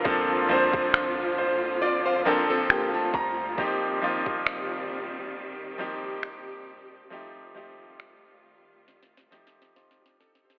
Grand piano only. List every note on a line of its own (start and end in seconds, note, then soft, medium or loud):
0.00 0.27 F4 medium
0.00 0.27 A#4 medium
0.04 0.36 F3 medium
0.04 0.36 A#3 medium
0.04 0.37 C4 medium
0.04 0.37 D4 medium
0.04 0.37 A4 medium
0.49 1.70 F3 medium
0.49 1.71 A#3 medium
0.49 1.71 C4 medium
0.49 1.71 D4 medium
0.49 1.37 C5 medium
1.38 1.79 C5 medium
1.82 2.04 D5 medium
2.06 2.25 F5 medium
2.25 3.16 F3 medium
2.25 3.16 A#3 medium
2.25 3.17 C4 medium
2.25 3.17 D4 medium
2.25 3.17 A4 medium
2.25 2.67 G5 medium
2.70 2.92 G5 medium
2.94 3.13 A5 medium
3.14 3.55 A#5 medium
3.57 3.89 F3 medium
3.57 3.89 A#3 medium
3.57 3.90 C4 medium
3.57 3.90 D#4 medium
3.57 3.90 G4 medium
4.02 5.23 F3 medium
4.02 5.24 A#3 medium
4.02 5.24 C4 medium
4.02 5.24 D#4 medium
4.02 5.24 F4 medium
5.78 6.69 F3 medium
5.78 6.69 A#3 medium
5.78 6.69 C4 medium
5.78 6.70 D#4 medium
5.78 6.70 G4 medium
7.10 7.42 F3 medium
7.10 7.42 A3 medium
7.10 7.42 C4 medium
7.10 7.43 D#4 medium
7.10 7.43 G4 medium
7.54 8.76 F3 medium
7.54 8.76 A3 medium
7.54 8.77 C4 medium
7.54 8.77 D#4 medium
7.54 8.77 G4 medium
9.31 10.22 F3 medium
9.31 10.22 A3 medium
9.31 9.75 C4 medium
9.31 9.76 D#4 medium
9.31 9.77 G4 medium
9.77 9.99 C4 soft
9.77 9.99 F4 medium
10.00 10.20 D4 medium
10.00 10.19 G4 medium
10.20 10.43 D#4 medium
10.20 10.43 A4 medium
10.45 10.58 G4 soft
10.45 10.58 C5 medium